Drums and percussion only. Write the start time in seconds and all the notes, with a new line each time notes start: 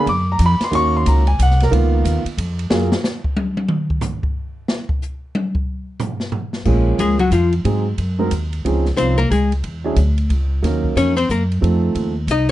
0.07 kick, ride
0.39 hi-hat pedal, ride
0.61 snare, ride
0.72 kick, ride
1.06 kick, hi-hat pedal, ride
1.27 ride
1.39 hi-hat pedal, ride
1.51 snare
1.60 snare, ride
1.72 kick, ride
2.05 kick, hi-hat pedal, ride
2.26 ride
2.38 kick, ride
2.59 ride
2.71 snare
2.92 snare
3.04 snare, hi-hat pedal
3.24 kick
3.37 high tom
3.57 high tom
3.68 mid tom
3.90 kick
4.01 floor tom, hi-hat pedal
4.23 kick
4.68 snare
4.89 kick
5.02 hi-hat pedal
5.35 high tom
5.55 kick
6.00 floor tom, hi-hat pedal
6.20 snare
6.32 floor tom
6.53 snare
6.65 kick, crash
6.99 kick, hi-hat pedal, ride
7.19 ride
7.32 hi-hat pedal, ride
7.53 ride
7.65 kick, ride
7.98 kick, ride
8.31 kick, hi-hat pedal, ride
8.53 ride
8.65 kick, ride
8.85 snare
8.97 kick, hi-hat pedal, ride
9.19 ride
9.31 kick, hi-hat pedal, ride
9.52 ride
9.64 kick, ride
9.96 hi-hat pedal, ride
10.18 ride
10.30 kick, ride
10.63 kick, snare, ride
10.84 kick
10.97 hi-hat pedal, ride
11.18 ride
11.29 kick, hi-hat pedal
11.52 ride
11.62 kick, ride
11.95 kick, ride
12.28 kick, hi-hat pedal, ride